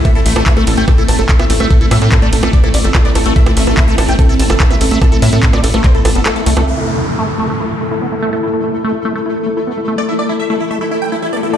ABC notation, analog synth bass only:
X:1
M:4/4
L:1/16
Q:1/4=145
K:Am
V:1 name="Analog synth bass" clef=bass
z2 A,,, A,,, z2 A,,, A,,, z2 A,,, G,,, z2 A,,, A,,, | z2 A,, A,, z2 A,,, A,,, z2 A,,, G,,, z2 A,,, A,,, | z2 A,,, A,,, z2 A,,, A,,, z2 A,,, G,,, z2 A,,, A,,, | z2 A,, A,, z2 A,,, A,,, z2 A,,, G,,, z2 C,, C,, |
z16 | z16 | z16 |]